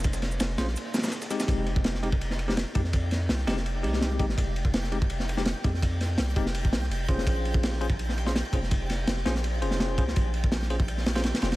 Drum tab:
RD |x---x---x---x---x---xxxxx---x---|x---x---x---x---x---x---x---x---|x---x---x---x---x---x---x---x---|x---x---x---x---x---x---x---x---|
SH |x-x---x-x---x---x---x-x-x-x-x-x-|--------------------------------|--------------------------------|--------------------------------|
SD |--o-o---o-o-o-o-----ooooo-o-o-o-|--------o-o-------o---o-o-----o-|----o---o-o-o-o-------o-o-----o-|--------o-o-------o---o-o-----o-|
BD |o-------------------------------|o-----o-------o-------------o---|o---------------------------o---|o-----o-------o-------------o---|

RD |x---x---x---x---x---x---x---x---|x---x---x---x---x---x---x---x---|x---x---x---x---x---x---x---x---|x---x---x---x---x---x-x-x-x-x-x-|
SH |--------------------------------|--------------------------------|--------------------------------|--------------------------------|
SD |----o---o-o---o-----o-o-------o-|--------o-o-------o---o-o-----o-|----o---o-o-o-o-------o-o-----o-|--------o-o-------o-o-o-o-o-o-o-|
BD |o-----------o-----o---------o---|o-----o-------o-------------o---|o---------------------------o---|o-----o-------o-----------------|